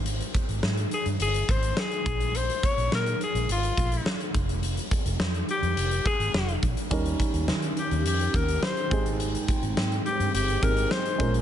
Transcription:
<<
  \new Staff \with { instrumentName = "Alto saxophone" } { \time 4/4 \key aes \major \tempo 4 = 105 r4. aes'8 aes'8 c''8 aes'4 | c''8 des''8 bes'8 aes'8 f'4. r8 | r4. g'4 aes'4 r8 | r4. g'8 g'8 bes'8 c''8. r16 |
r4. g'8 g'8 bes'8 c''8. r16 | }
  \new Staff \with { instrumentName = "Grand piano" } { \time 4/4 \key aes \major r1 | r1 | r1 | <g des' ees' bes'>2.~ <g des' ees' bes'>8 <c' ees' g' aes'>8~ |
<c' ees' g' aes'>2~ <c' ees' g' aes'>8 <c' ees' g' aes'>4 <aes des' f' bes'>8 | }
  \new Staff \with { instrumentName = "Grand piano" } { \clef bass \time 4/4 \key aes \major r1 | r1 | r1 | ees4. r2 aes,8~ |
aes,4 r2 r8 bes,8 | }
  \new Staff \with { instrumentName = "Analog synth pad" } { \time 4/4 \key aes \major << { r1 | r1 | r1 | <des' g'>2.~ <des' g'>8 <c' g''>8~ |
<c' g''>2.~ <c' g''>8 <bes des'>8 | } \\ { r1 | r1 | r1 | ees2.~ ees8 aes8~ |
aes1 | } >> }
  \new Staff \with { instrumentName = "Fingered electric bass" } { \clef bass \time 4/4 \key aes \major aes,,8 r16 aes,,16 aes,8 r16 g,16 g,,8 aes,,8 r8 bes,,8~ | bes,,8 r16 bes,,16 bes,8 r16 bes,,16 aes,,8 bes,,8 r8 f,,8~ | f,,8 r16 f,,16 f,8 r16 f,16 f,,8 r16 aes,,16 f,,8 bes,,16 r16 | ees,8 r16 ees,16 ees8 r16 ees,16 f,8 ees,8 r8 aes,,8~ |
aes,,8 r16 aes,,16 aes,8 r16 g,16 g,,8 aes,,8 r8 bes,,8 | }
  \new DrumStaff \with { instrumentName = "Drums" } \drummode { \time 4/4 hh16 hh16 <hh bd>16 hh16 sn16 hh16 hh16 hh16 hh16 hh16 <hh bd>16 hh16 sn16 hh16 <hh bd>16 hh16 | hh16 hh16 <hh bd>16 hh16 sn16 hh16 hh16 hh16 hh16 hh16 <hh bd>16 hh16 sn16 hh16 <hh bd>16 hh16 | hh16 hh16 <hh bd>16 hh16 sn16 hh16 hh16 hh16 hh16 hh16 <hh bd>16 hh16 sn16 hh16 <hh bd>16 hh16 | <hh bd>16 hh16 <hh bd>16 hh16 sn16 hh16 hh16 hh16 hh16 hh16 <hh bd>16 hh16 sn16 hh16 <hh bd>16 hh16 |
hh16 hh16 <hh bd>16 hh16 sn16 hh16 hh16 hh16 hh16 hh16 <hh bd>16 hh16 sn16 hh16 <hh bd>16 hh16 | }
>>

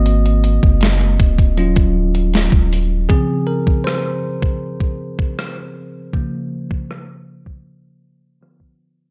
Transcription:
<<
  \new Staff \with { instrumentName = "Tine electric piano" } { \time 4/4 \key des \major \tempo 4 = 79 ees''2~ ees''8 r4. | aes'8 bes'8 c''2.~ | c''2. r4 | }
  \new Staff \with { instrumentName = "Tine electric piano" } { \time 4/4 \key des \major <bes c' ges'>2 <ges des' f'>8 r4. | <des f c'>4. r2 r8 | <des f bes>8 r2 r8 <d f b>8 r8 | }
  \new Staff \with { instrumentName = "808-style bass" } { \clef bass \time 4/4 \key des \major aes,,8. ges,,8. ees,,8. ees,,4 ees,,8. | r1 | r1 | }
  \new DrumStaff \with { instrumentName = "Drums" } \drummode { \time 4/4 hh16 hh16 hh16 bd16 <hh sn>16 hh16 <hh bd>16 <hh bd>16 hh16 <hh bd>8 hh16 <hh sn>16 <hh bd>16 hho8 | bd8. bd16 ss8. bd16 r16 bd8 bd16 ss4 | bd8. bd16 ss8. bd16 r4 ss16 bd8. | }
>>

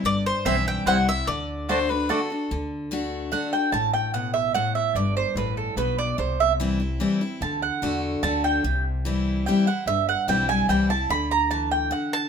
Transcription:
<<
  \new Staff \with { instrumentName = "Mandolin" } { \time 3/4 \key d \mixolydian \tempo 4 = 147 r4 <c' e' c'' g''>8 r8 <c' e' c'' g''>8 r8 | r4 <a fis' d'' a''>8 r8 <a fis' d'' a''>8 r8 | r2 fis''8 g''8 | a''8 g''8 fis''8 e''8 fis''8 e''8 |
d''8 c''8 b'8 a'8 b'8 d''8 | c''8 e''8 r2 | a''8 fis''4 r8 a''8 g''8~ | g''8 r4. g''8 fis''8 |
e''8 fis''8 g''8 gis''8 g''8 a''8 | b''8 bes''8 a''8 g''8 fis''8. r16 | }
  \new Staff \with { instrumentName = "Mandolin" } { \time 3/4 \key d \mixolydian d''8 c''8 e''8 g''8 fis''8 e''8 | d''2 r4 | r2. | r2. |
r2. | r2. | r2. | r2. |
r2. | r2 r8 a''8 | }
  \new Staff \with { instrumentName = "Fiddle" } { \time 3/4 \key d \mixolydian r2. | r4 c''8 b'8 a'4 | r2. | r2. |
r2. | r2. | r2. | r2. |
r2. | r2. | }
  \new Staff \with { instrumentName = "Steel-string acoustic guitar" } { \time 3/4 \key d \mixolydian << { r4 <e g c' e'>4 <e g c' e'>8 e'8 | r4 <d a d' fis'>8 <d' fis'>8 <d a d' fis'>8 <d' fis'>8 | r4 <d a d' fis'>4 <d a d' fis'>8 <d' fis'>8 | r2. |
r2. | r4 <e g c' e'>8 <c' e'>8 <e g c' e'>8 <c' e'>8 | r4 <d a d' fis'>4 <d a d' fis'>4 | r4 <e g c' e'>4 <e g c' e'>8 <c' e'>8 |
r4 <e g c' e'>8 <c' e'>8 <e g c' e'>8 <c' e'>8 | r2. | } \\ { g,2 r4 | d2 r4 | d2 r4 | a,4 b,4 a,4 |
g,4 a,4 b,4 | c2 r4 | d2 r4 | c2 r4 |
g,2 r4 | d4 e4 d4 | } >> }
  \new Staff \with { instrumentName = "Upright bass" } { \clef bass \time 3/4 \key d \mixolydian g,,4 b,,4 c,4 | d,2. | d,2. | a,,2. |
g,,4 a,,4 b,,4 | c,2. | d,4 e,4 d,4 | c,2. |
g,,4 b,,4 c,4 | d,2. | }
>>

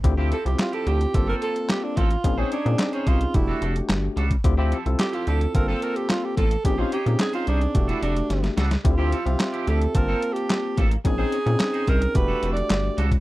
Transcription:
<<
  \new Staff \with { instrumentName = "Alto saxophone" } { \time 4/4 \key d \minor \tempo 4 = 109 r8 a'16 g'16 f'16 a'16 g'8. bes'16 a'8 g'16 d'16 f'8~ | f'16 des'16 d'8. des'16 f'8 e'8 r4. | r4 g'16 f'16 a'8 bes'16 a'16 bes'16 g'16 f'16 g'16 a'8 | g'16 f'16 g'8 aes'16 f'16 d'8. e'16 d'4 r8 |
f'4. a'8 \tuplet 3/2 { bes'4 g'8~ } g'8. r16 | aes'4. bes'8 \tuplet 3/2 { b'4 d''8~ } d''8. r16 | }
  \new Staff \with { instrumentName = "Clean electric guitar" } { \time 4/4 \key d \minor r16 <f c' e' g'>16 <f c' e' a'>16 r8 <f c' e' g'>16 <f c' e' g'>16 r8 <bes c' f' a'>16 <bes c' f' a'>16 r8. <bes c' f' a'>16 r16 | r16 <des' ees' aes' c''>16 <des' ees' aes' des''>16 r8 <des' ees' aes' c''>16 <des' ees' aes' c''>16 r8 <g d' fis' a'>16 <g d' fis' a'>16 r8. <g d' fis' a'>16 r16 | r16 <f c' e' g'>16 <f c' e' a'>16 r8 <f c' e' g'>16 <f c' e' g'>16 r8 <bes c' f' a'>16 <bes c' f' a'>16 r8. <bes c' f' a'>16 r16 | r16 <des' ees' aes' c''>16 <des' ees' aes' des''>16 r8 <des' ees' aes' c''>16 <des' ees' aes' c''>16 r8 <g d' fis' a'>16 <g d' fis' a'>16 r8. <g d' fis' a'>16 r16 |
r16 <f c' e' g'>16 <f c' e' a'>16 r8 <f c' e' g'>16 <f c' e' g'>16 r8 <bes c' f' a'>16 r4 <bes c' f' a'>16 r16 | r16 <des' ees' aes' c''>16 <des' ees' aes' des''>16 r8 <des' ees' aes' c''>16 <des' ees' aes' c''>16 r8 <g d' fis' a'>16 <g d' fis' a'>16 r8. <g d' fis' a'>16 r16 | }
  \new Staff \with { instrumentName = "Tine electric piano" } { \time 4/4 \key d \minor <c' e' f' g'>16 <c' e' f' g'>16 r16 <c' e' f' g'>4~ <c' e' f' g'>16 <bes c' f' a'>4. r8 | <c' des' ees' aes'>16 <c' des' ees' aes'>16 r16 <c' des' ees' aes'>4~ <c' des' ees' aes'>16 <a d' fis' g'>4. r8 | <c' e' f' g'>16 <c' e' f' g'>16 r16 <c' e' f' a'>4~ <c' e' f' a'>16 <bes c' f' a'>4. r8 | <c' des' ees' aes'>16 <c' des' ees' g'>16 r16 <c' des' ees' aes'>4~ <c' des' ees' aes'>16 <a d' fis' g'>4. r8 |
<c' e' f' g'>16 <c' e' f' g'>16 r16 <c' f' g' e''>4~ <c' f' g' e''>16 <bes c' f' a''>4. r8 | <c' des' ees' aes'>16 <c' des' ees' aes'>16 r16 <c' des' ees' aes'>4~ <c' des' ees' aes'>16 <a d' fis' g'>4. r8 | }
  \new Staff \with { instrumentName = "Analog synth bass" } { \clef bass \time 4/4 \key d \minor d,8. c,16 r8 d,8 g,,8 r4 a,,8 | bes,,8 r16 bes,16 r8 c,8 e,,8 f,,8 g,,8 cis,8 | d,8. c,16 r8 d,8 g,,8 r4 a,,8 | bes,,8 r16 bes,16 r8 c,8 e,,8 f,,8 g,,8 cis,8 |
d,8. c,16 r8 d,8 g,,8 r4 a,,8 | bes,,8 r16 bes,16 r8 c,8 e,,8 f,,8 g,,8 cis,8 | }
  \new DrumStaff \with { instrumentName = "Drums" } \drummode { \time 4/4 <hh bd>8 hh16 hh16 <hc hh sn>16 hh16 hh16 hh16 <hh bd>8 hh16 hh16 <hc hh sn>8 <hh bd>16 hh16 | <hh bd>8 hh16 hh16 <hc hh sn>16 hh16 <hh bd>16 hh16 <hh bd>8 hh16 hh16 <hc hh sn>8 hh16 <hh bd>16 | <hh bd>8 hh16 hh16 <hc hh sn>16 hh16 hh16 hh16 <hh bd>8 hh16 hh16 <hc hh sn>8 <hh bd>16 hh16 | <hh bd>8 hh16 hh16 <hc hh sn>16 hh16 hh16 hh16 <hh bd>16 hh16 hh16 hh16 <hh sn>16 <hh sn>16 <hh sn>16 <hh sn>16 |
<hh bd>8 hh16 hh16 <hc hh sn>16 hh16 hh16 hh16 <hh bd>8 hh16 hh16 <hc hh sn>8 <hh bd>16 hh16 | <hh bd>8 hh16 hh16 <hc hh sn>16 hh16 <hh bd>16 hh16 <hh bd>8 hh16 hh16 <hc hh sn>8 hh16 <hh bd>16 | }
>>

